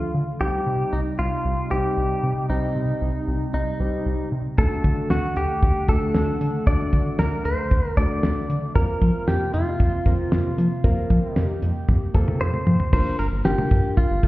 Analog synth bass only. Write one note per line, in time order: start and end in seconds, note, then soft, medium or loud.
0.14 0.24 D3 medium
0.41 0.50 C2 loud
0.67 0.76 C3 loud
0.93 1.02 C2 medium
1.19 1.29 C2 loud
1.45 1.55 C2 loud
1.71 1.81 C2 medium
1.97 2.07 C2 loud
2.23 2.33 C3 medium
2.50 2.59 C2 loud
2.76 2.85 C3 loud
3.02 3.11 C2 loud
3.28 3.37 C2 loud
3.54 3.63 C2 loud
3.80 3.90 C2 medium
4.06 4.16 C2 loud
4.32 4.42 C3 medium
4.58 4.68 D2 loud
4.84 4.94 D3 loud
5.10 5.20 D2 loud
5.36 5.46 D2 loud
5.63 5.72 D2 loud
5.89 5.98 D2 loud
6.15 6.24 D2 loud
6.41 6.50 D3 medium
6.67 6.77 D2 loud
6.93 7.03 D3 loud
7.19 7.29 D2 medium
7.45 7.55 D2 loud
7.71 7.81 D2 loud
7.97 8.07 D2 medium
8.23 8.33 D2 loud
8.49 8.59 D3 loud
8.76 8.85 F2 loud
9.02 9.11 F3 loud
9.28 9.37 F2 loud
9.54 9.64 F2 loud
9.80 9.90 F2 loud
10.06 10.16 F2 loud
10.32 10.42 F2 loud
10.58 10.68 F3 loud
10.84 10.94 F2 loud
11.10 11.20 F3 loud
11.36 11.46 F2 medium
11.62 11.72 F2 loud
11.89 11.98 F2 loud
12.15 12.24 F2 loud
12.41 12.50 F2 loud
12.67 12.76 F3 medium
12.93 13.03 G1 loud
13.19 13.29 G1 loud
13.32 13.42 G1 loud
13.45 13.55 G1 loud
13.71 13.81 G2 medium
14.10 14.20 G1 loud
14.23 14.28 G1 medium